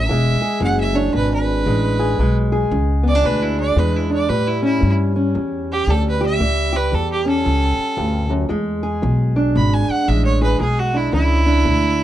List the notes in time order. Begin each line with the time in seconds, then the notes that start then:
Already playing: E5
0.09 E1 E2 G#3
0.42 G#4
0.60 F#1 E3 F#5
0.80 E5
0.94 D4 C#5
1.14 G#1 B2 B4
1.34 B4
1.66 A1 E3 G#3
1.99 G#4
2.18 B1 E2 G#3
2.52 G#4
2.71 C#2 E3
3.03 B3
3.08 D5
3.15 D4
3.24 D2 B2 B4
3.42 E4
3.60 D5
3.76 E2 E3 G#3 B4
3.96 E4
4.10 D4 D5
4.29 A2 G3 B4
4.48 E4
4.62 C#4 E4
4.80 G2 E3
5.16 C#4
5.35 E2
5.72 G4
5.87 D2 E3 G3 A4
6.09 B4
6.21 G4
6.26 E5
6.39 C#2 A2 G3
6.73 G4 B4
6.92 E2 E3 A4
7.12 G4
7.25 C#4 A4
7.44 C#2 E2
7.97 D2 G2
8.30 F#2
8.49 E2 G#3
8.83 G#4
9.02 B1 E3
9.36 D4
9.56 G#1 B2 B5
9.74 G#5
9.88 F#5, muted upright bass stroke
10.08 A1 E3 G#3 E5
10.25 C#5
10.42 G#4 B4
10.60 B1 E2 G#3 G#4
10.79 F#4
10.94 D4 E4
11.13 C#2 E3 E4
11.46 D4
11.65 D2 B2